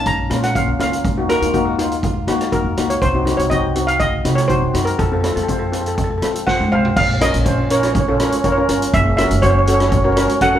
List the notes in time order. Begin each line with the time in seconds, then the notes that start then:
Already playing: A#1 A#3 C#4 D#4
0.06 A#5, kick, closed hi-hat
0.30 A#2 A#3 C#4 F4, cross-stick, closed hi-hat
0.43 F#5, cross-stick, closed hi-hat
0.55 A#3 C#4 F4 F5, kick, closed hi-hat
0.68 A#1
0.79 C#2 A#3 C#4 F4 F5, cross-stick, closed hi-hat
0.93 closed hi-hat
1.05 D#2, kick, closed hi-hat
1.17 A#3 D#4 F#4
1.29 A#3 D#4 F#4 A#4, cross-stick, closed hi-hat
1.41 D#2 A#3 D#4 F4, closed hi-hat
1.54 A#3 D#4 F#4, kick, closed hi-hat
1.66 F#4
1.79 A#3 D#4 F4, closed hi-hat
1.92 closed hi-hat
2.03 F4, kick, closed hi-hat
2.27 D#3 A#3 D#4 F#4, cross-stick, closed hi-hat
2.41 cross-stick, closed hi-hat
2.52 A#3 D#4 F#4 A#4, kick, closed hi-hat
2.65 D#2
2.77 C#2 A#3 D#4 F#4, cross-stick, closed hi-hat
2.90 C#5, closed hi-hat
3.02 C2 C5, kick, closed hi-hat
3.14 C4 D#4 F#4
3.25 C4 D#4 F#4, cross-stick, closed hi-hat
3.37 C2 C4 D#4 F#4 C#5, closed hi-hat
3.50 C4 D#4 F#4 D#5, kick, closed hi-hat
3.76 C4 D#4 F#4, closed hi-hat
3.87 F5, closed hi-hat
4.00 D#5, kick, closed hi-hat
4.25 C3 C4 D#4 F#4, cross-stick, closed hi-hat
4.35 C#5, cross-stick, closed hi-hat
4.48 C4 D#4 F#4 C5, kick, closed hi-hat
4.62 C2
4.74 F#2 C4 D#4 F#4, cross-stick, closed hi-hat
4.85 A#4, closed hi-hat
4.99 F2 A4, kick, closed hi-hat
5.06 A4
5.11 C4 F4 A4
5.21 C4 F4 A4, cross-stick, closed hi-hat
5.28 A4
5.36 F2 C4 F4 A4, closed hi-hat
5.43 A4
5.48 C4 F4 A4 C5, kick, closed hi-hat
5.59 A4
5.67 A4
5.72 C4 F4 A4, closed hi-hat
5.81 A4
5.86 A4, closed hi-hat
5.95 A4, kick, closed hi-hat
6.04 A4
6.10 A4
6.18 A4
6.22 F3 C4 F4 A4, cross-stick, closed hi-hat
6.36 closed hi-hat
6.47 C4 F4 C5 F#5, kick, snare
6.60 F2, high tom
6.72 C2 C4 F4 C5 F5, mid tom
6.85 floor tom
6.96 A#1 F5, kick, crash
7.21 C#4 F4 A#4 D#5, cross-stick, closed hi-hat
7.34 A#1, closed hi-hat
7.45 C#4 F4 C5, kick, closed hi-hat
7.70 C#4 F4 A#4 C#5, closed hi-hat
7.79 C#5, cross-stick, closed hi-hat
7.86 C#5
7.94 C#5, kick, closed hi-hat
8.00 C#5
8.08 C#4 F4 A4 C#5
8.15 C#5
8.20 C#4 F4 A#4 C#5, cross-stick, closed hi-hat
8.30 C#5, closed hi-hat
8.37 C#5
8.44 C#4 F4 A#4 C#5, kick, closed hi-hat
8.52 C#5
8.57 C#4 F4 A#4
8.69 G1 C#4 F4 A#4, closed hi-hat
8.82 closed hi-hat
8.94 F#1 E5, kick, closed hi-hat
9.17 C#4 F#4 A#4 E5, cross-stick, closed hi-hat
9.31 F#1, closed hi-hat
9.42 C#4 F#4 C5 C#5, kick, closed hi-hat
9.51 C#5
9.59 C#5
9.66 C#4 F#4 A4 C#5, closed hi-hat
9.74 C#5
9.80 cross-stick, closed hi-hat
9.89 C#5, kick, closed hi-hat
9.97 C#5
10.04 C#4 F#4 A#4 C#5
10.12 C#5
10.17 C#4 F#4 A#4 C#5, cross-stick, closed hi-hat
10.27 C#5, closed hi-hat
10.41 C#4 F#4 A4 F#5, kick, closed hi-hat
10.55 C#4 F#4 A#4